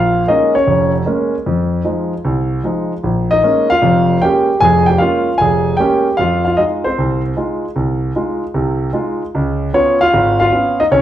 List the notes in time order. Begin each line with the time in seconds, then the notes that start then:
Already playing: A#1 F4 F5
0.27 G#3 A#3 C#4 D#4 D#5
0.55 C#4 C#5
0.67 F1
1.06 G#3 A#3 C#4
1.46 F2
1.84 F3 G#3 D#4
2.25 C2
2.64 F3 G#3 D#4
3.03 A#1
3.31 D#4 D#5
3.43 G#3 A#3 C#4
3.70 F4 F5
3.82 F1 F2
4.21 G#3 A#3 C#4 G4 G5
4.60 F1 F2 G#4 G#5
4.86 G4 G5
4.98 G#3 A#3 C#4 F4 F5
5.38 F1 G#4 G#5
5.77 G#3 A#3 C#4 G4 G5
6.17 F2 F4 F5
6.45 F4 F5
6.57 G#3 D#4 F4 D#5
6.84 C4 C5
6.98 C2
7.37 G#3 D#4 F4
7.76 C2
8.16 G#3 D#4 F4
8.54 C2 C3
8.93 G#3 D#4 F4
9.35 C#2
9.73 B3 C#4 F4 C#5
10.01 F4 F5
10.14 G#1
10.40 F4 F5
10.52 B3 C#4 F4
10.80 D#4 D#5
10.91 C2 C#4 C#5